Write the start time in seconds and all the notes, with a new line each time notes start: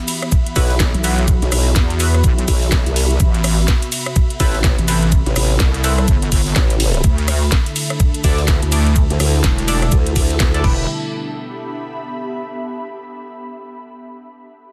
Already playing: E3 B3 F#4 E5 B5
0.08 open hi-hat, ride, shaker
0.22 cross-stick, closed hi-hat
0.32 kick, closed hi-hat, shaker
0.46 closed hi-hat
0.56 B1 B3 E4 F#4 B4, kick, open hi-hat, ride, shaker
0.70 closed hi-hat
0.80 kick, snare, closed hi-hat, shaker
0.94 B1, closed hi-hat
1.04 B3 E4 F#4 B4, open hi-hat, ride, shaker
1.18 closed hi-hat
1.28 kick, closed hi-hat, shaker
1.42 B1, snare, closed hi-hat
1.52 B1, cross-stick, open hi-hat, ride, shaker
1.76 E2, kick, snare, closed hi-hat, shaker
1.90 snare, closed hi-hat
2.00 B3 E4 F#4 B4, open hi-hat, ride, shaker
2.14 cross-stick, snare, closed hi-hat
2.24 B1, kick, closed hi-hat, shaker
2.38 closed hi-hat
2.48 B1, kick, open hi-hat, ride, shaker
2.62 closed hi-hat
2.72 kick, snare, closed hi-hat, shaker
2.86 C2, closed hi-hat
2.96 open hi-hat, ride
3.10 closed hi-hat
3.20 A1 C3 B3 A4, kick, closed hi-hat, shaker
3.34 snare, closed hi-hat
3.44 cross-stick, open hi-hat, ride, shaker
3.58 snare
3.68 A4, kick, snare, closed hi-hat, shaker
3.82 closed hi-hat
3.92 open hi-hat, ride, shaker
4.06 cross-stick, closed hi-hat
4.16 kick, closed hi-hat, shaker
4.30 closed hi-hat
4.40 A1 C4 E4 A4 B4, kick, open hi-hat, ride, shaker
4.54 closed hi-hat
4.64 kick, snare, closed hi-hat, shaker
4.78 A1, closed hi-hat
4.88 C4 E4 A4 B4, open hi-hat, ride, shaker
5.03 closed hi-hat
5.12 kick, closed hi-hat, shaker
5.26 A1, snare, closed hi-hat
5.36 A1, cross-stick, open hi-hat, ride, shaker
5.60 C2, kick, snare, closed hi-hat, shaker
5.74 snare, closed hi-hat
5.84 C4 E4 A4 B4, open hi-hat, ride, shaker
5.98 cross-stick, snare, closed hi-hat
6.08 G1, kick, closed hi-hat, shaker
6.22 closed hi-hat
6.32 kick, open hi-hat, ride, shaker
6.46 closed hi-hat
6.56 A1, kick, snare, closed hi-hat, shaker
6.70 closed hi-hat
6.80 open hi-hat, ride
6.94 closed hi-hat
7.04 D2 D3 A3 D4 E4, kick, closed hi-hat, shaker
7.18 snare, closed hi-hat
7.28 cross-stick, open hi-hat, ride, shaker
7.42 snare
7.52 kick, snare, closed hi-hat, shaker
7.66 closed hi-hat
7.72 A5
7.76 open hi-hat, ride, shaker
7.90 cross-stick, closed hi-hat
8.00 kick, closed hi-hat, shaker
8.14 closed hi-hat
8.24 D2 D4 E4 A4 D5, kick, open hi-hat, ride, shaker
8.38 closed hi-hat
8.48 kick, snare, closed hi-hat, shaker
8.62 D2, closed hi-hat
8.72 D4 E4 A4 D5, open hi-hat, ride, shaker
8.86 closed hi-hat
8.96 kick, closed hi-hat, shaker
9.10 D2, snare, closed hi-hat
9.20 D2, cross-stick, open hi-hat, ride, shaker
9.44 E1, kick, snare, closed hi-hat, shaker
9.58 snare, closed hi-hat
9.68 D4 E4 A4 D5, open hi-hat, ride, shaker
9.82 cross-stick, snare, closed hi-hat
9.92 D2, kick, closed hi-hat, shaker
10.06 closed hi-hat
10.16 kick, open hi-hat, ride, shaker
10.30 closed hi-hat
10.40 D2, kick, snare, closed hi-hat, shaker
10.54 D4 E4 A4 D5, closed hi-hat
10.64 E1 B2 G3 B3 E4 G4 B4, kick, crash
10.73 G4
11.04 E5
11.10 B5